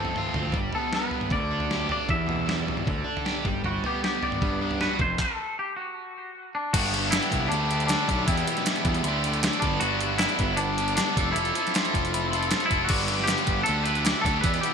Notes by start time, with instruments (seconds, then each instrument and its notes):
Already playing: overdriven electric guitar C3 F3 A3 C4, clean electric guitar A4
0.05 floor tom
0.16 overdriven electric guitar F4, mid tom
0.34 picked electric bass D2, overdriven electric guitar C4, floor tom, mid tom
0.52 picked electric bass G1, overdriven electric guitar G3, kick, floor tom
0.73 overdriven electric guitar B3, clean electric guitar A4, floor tom
0.93 overdriven electric guitar B3, clean electric guitar B4, snare
1.11 overdriven electric guitar G3, floor tom
1.21 mid tom
1.30 picked electric bass D2, overdriven electric guitar D3, clean electric guitar D5, kick, floor tom
1.51 overdriven electric guitar D4
1.60 floor tom
1.70 overdriven electric guitar G4, snare
1.89 overdriven electric guitar D4, clean electric guitar D5, floor tom
2.07 overdriven electric guitar E2, picked electric bass E2, clean electric guitar E5, kick, floor tom
2.26 overdriven electric guitar B2, floor tom
2.46 overdriven electric guitar G3, snare
2.65 overdriven electric guitar E3, floor tom
2.77 mid tom
2.85 picked electric bass D2, overdriven electric guitar D3, kick, floor tom
3.04 overdriven electric guitar D4
3.17 floor tom
3.25 overdriven electric guitar G4, snare
3.45 picked electric bass G1, overdriven electric guitar G3, kick, floor tom
3.64 picked electric bass G1, overdriven electric guitar G3, clean electric guitar F#4, floor tom
3.84 overdriven electric guitar B3, clean electric guitar G4, floor tom
4.04 overdriven electric guitar B3, clean electric guitar G4, snare
4.23 overdriven electric guitar G3, clean electric guitar D5, floor tom
4.32 mid tom
4.41 picked electric bass G2, overdriven electric guitar B3, kick, floor tom
4.61 overdriven electric guitar D4
4.71 floor tom
4.81 overdriven electric guitar F#4, clean electric guitar B4, snare
4.99 picked electric bass F1, overdriven electric guitar F2, clean electric guitar C5, kick, floor tom
5.19 clean electric guitar A4, kick, clap
5.59 clean electric guitar G4
5.76 clean electric guitar F#4
6.55 clean electric guitar D4
6.73 picked electric bass G1, overdriven electric guitar G2 D3 G3 B3 D4 G4, clean electric guitar F#4, glockenspiel A5, kick, closed hi-hat, crash
6.94 overdriven electric guitar G3 B3 D4 G4, closed hi-hat
7.11 overdriven electric guitar G2 D3, clean electric guitar E4, snare, clap, closed hi-hat
7.15 overdriven electric guitar G3 B3 D4 G4, glockenspiel G5
7.23 closed hi-hat
7.32 picked electric bass C2, kick, closed hi-hat
7.48 picked electric bass D2, overdriven electric guitar D3, clean electric guitar D4, closed hi-hat
7.53 overdriven electric guitar A3 D4 G4, glockenspiel B5
7.71 overdriven electric guitar A3 D4 G4, closed hi-hat
7.80 closed hi-hat
7.87 overdriven electric guitar D3, clean electric guitar D4, glockenspiel A5, snare, clap, closed hi-hat
7.91 overdriven electric guitar A3 D4 G4
8.09 picked electric bass B1, overdriven electric guitar A3 D4 G4, kick, closed hi-hat
8.27 picked electric bass E2, overdriven electric guitar E2 B2 E3 G3 B3, clean electric guitar E4, glockenspiel G5, kick, closed hi-hat
8.32 overdriven electric guitar G4
8.37 closed hi-hat
8.47 overdriven electric guitar E3 G3 B3 G4, closed hi-hat
8.57 snare, closed hi-hat
8.66 overdriven electric guitar E2 B2 E3 G3 B3 G4, snare, clap, closed hi-hat
8.76 closed hi-hat
8.85 picked electric bass E2, kick, closed hi-hat
8.95 closed hi-hat
9.03 picked electric bass D2, overdriven electric guitar D3 A3 D4, glockenspiel C6, closed hi-hat
9.08 overdriven electric guitar G4
9.24 overdriven electric guitar D4 G4, closed hi-hat
9.29 overdriven electric guitar A3
9.34 closed hi-hat
9.43 overdriven electric guitar D3 A3 D4 G4, snare, clap, closed hi-hat
9.53 closed hi-hat
9.60 picked electric bass G1, overdriven electric guitar G3 B3 D4 G4, clean electric guitar D4, glockenspiel B5, kick, closed hi-hat
9.64 overdriven electric guitar G2 D3
9.80 picked electric bass G1, overdriven electric guitar G2 D3 G3 B3 D4 G4, clean electric guitar F#4, closed hi-hat
10.01 overdriven electric guitar G3 B3 D4 G4, closed hi-hat
10.18 overdriven electric guitar G2 D3 G3 B3 D4 G4, clean electric guitar E4, glockenspiel B5, snare, clap, closed hi-hat
10.29 snare, closed hi-hat
10.39 picked electric bass G1, kick, closed hi-hat
10.57 clean electric guitar D4, closed hi-hat
10.78 overdriven electric guitar G3 B3 D4 G4, closed hi-hat
10.88 closed hi-hat
10.96 overdriven electric guitar G3 B3 D4 G4, clean electric guitar D4, snare, clap, closed hi-hat
11.16 picked electric bass F1, overdriven electric guitar F3 C4 F4 A4, glockenspiel D6, kick, closed hi-hat
11.32 picked electric bass F1, clean electric guitar E4, closed hi-hat
11.36 overdriven electric guitar F3 C4 F4 A4
11.45 closed hi-hat
11.55 overdriven electric guitar C4 F4 A4, closed hi-hat
11.67 snare, closed hi-hat
11.73 overdriven electric guitar F3 C4 F4 A4, glockenspiel C6, snare, clap, closed hi-hat
11.85 snare, closed hi-hat
11.94 picked electric bass F1, kick, closed hi-hat
12.05 closed hi-hat
12.14 glockenspiel B5, closed hi-hat
12.31 overdriven electric guitar C4 F4 A4, glockenspiel C6, closed hi-hat
12.43 closed hi-hat
12.50 overdriven electric guitar F3 C4 F4 A4, snare, clap, closed hi-hat
12.60 closed hi-hat
12.66 clean electric guitar E4, overdriven electric guitar A4
12.70 picked electric bass F1, overdriven electric guitar C4 F4, kick, closed hi-hat
12.83 overdriven electric guitar G2, clean electric guitar F#4, glockenspiel E6
12.87 picked electric bass G1, overdriven electric guitar D3 G3 B3 D4 G4, glockenspiel D6, kick, crash
13.08 overdriven electric guitar G3 B3 D4 G4, closed hi-hat
13.19 snare
13.24 overdriven electric guitar G2 G3, clean electric guitar G4, closed hi-hat
13.28 overdriven electric guitar D3 B3 D4 G4, snare, clap
13.38 closed hi-hat
13.47 picked electric bass G1, kick, closed hi-hat
13.60 clean electric guitar A4, glockenspiel F#6
13.66 picked electric bass D2, overdriven electric guitar D3 A3 D4 G4, glockenspiel E6, closed hi-hat
13.83 overdriven electric guitar D4 G4, clean electric guitar B4, closed hi-hat
13.88 overdriven electric guitar A3
13.95 closed hi-hat
14.05 overdriven electric guitar D3 A3 D4 G4, glockenspiel D6, snare, clap, closed hi-hat
14.21 picked electric bass D2, overdriven electric guitar D4 G4, clean electric guitar A4, kick
14.26 overdriven electric guitar A3, closed hi-hat
14.41 overdriven electric guitar E2 B2 E3 G3 B3 G4, picked electric bass E2, clean electric guitar B4, glockenspiel E6, kick, closed hi-hat
14.54 closed hi-hat
14.61 overdriven electric guitar E3 G3 B3 G4, clean electric guitar G4, closed hi-hat